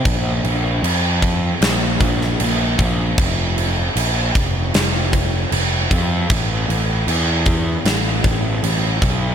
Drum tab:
CC |x-x-x-x-x-x-x-x-|x-x-x-x-x-x-x-x-|x-x-x-x-x-x-x-x-|
SD |--------o--o----|--------o-------|--------o-------|
BD |o-----o---o---o-|o-----o---o---o-|o-----o---o---o-|